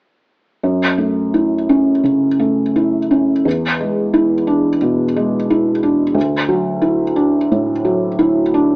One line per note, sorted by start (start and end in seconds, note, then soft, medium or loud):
0.63 2.01 F#2 soft
0.98 1.55 A3 soft
1.34 1.91 E4 soft
1.69 2.26 C#4 soft
2.04 2.61 C#3 soft
2.40 2.96 A3 soft
2.76 3.32 E4 soft
3.11 3.46 C#4 soft
3.45 4.78 E2 soft
3.80 4.34 G#3 soft
4.14 4.68 E4 soft
4.47 5.03 D4 soft
4.82 5.37 B2 soft
5.16 5.70 G#3 soft
5.50 6.03 E4 soft
5.83 6.16 D4 soft
6.14 7.47 D2 soft
6.49 7.04 F#3 soft
6.82 7.38 E4 soft
7.16 7.72 D4 soft
7.52 8.07 A2 soft
7.85 8.40 F#3 soft
8.19 8.75 E4 soft
8.54 8.76 D4 soft